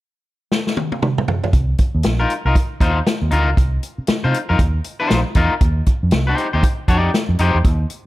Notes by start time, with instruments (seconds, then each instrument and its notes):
0.52 snare
0.67 snare
0.77 high tom
0.92 high tom
1.02 mid tom
1.18 mid tom
1.28 floor tom
1.44 floor tom
1.53 fingered electric bass C2, kick, closed hi-hat
1.78 kick, closed hi-hat
1.95 fingered electric bass D#2
2.03 fingered electric bass A#1, snare, closed hi-hat
2.20 clean electric guitar D#4 F4 A#4
2.30 closed hi-hat
2.45 fingered electric bass C2, clean electric guitar D#4 F4 A#4
2.55 kick, closed hi-hat
2.80 fingered electric bass D#2, clean electric guitar D#4 F4 C5, kick, closed hi-hat
3.07 snare, closed hi-hat
3.22 fingered electric bass D#2
3.31 fingered electric bass D2, clean electric guitar D#4 F4 A#4, closed hi-hat
3.47 fingered electric bass C#2
3.57 fingered electric bass C2, kick, closed hi-hat
3.83 closed hi-hat
3.98 muted fingered electric bass stroke
4.07 muted fingered electric bass stroke, snare, closed hi-hat
4.24 fingered electric bass C3, clean electric guitar D#4 F4 C5
4.34 closed hi-hat
4.49 fingered electric bass F2, clean electric guitar D#4 F4 A#4
4.59 fingered electric bass D#2, kick, closed hi-hat
4.84 closed hi-hat
5.00 clean electric guitar D#4 F4 C5
5.10 fingered electric bass A#1, snare, closed hi-hat
5.35 fingered electric bass E2, clean electric guitar D#4 F4 A#4, kick, closed hi-hat
5.61 fingered electric bass D#2, kick, closed hi-hat
5.86 kick, closed hi-hat
6.03 fingered electric bass F2
6.11 fingered electric bass C2, snare, closed hi-hat
6.27 clean electric guitar D#4 G4 C5
6.38 closed hi-hat
6.53 fingered electric bass D#2, clean electric guitar D#4 G4 C5
6.63 kick, closed hi-hat
6.88 fingered electric bass F2, clean electric guitar D#4 G4 D5, kick, closed hi-hat
7.14 snare, closed hi-hat
7.29 fingered electric bass F2
7.39 fingered electric bass F2, clean electric guitar D#4 G4 C5, closed hi-hat
7.55 fingered electric bass E2
7.65 fingered electric bass D#2, kick, closed hi-hat
7.90 closed hi-hat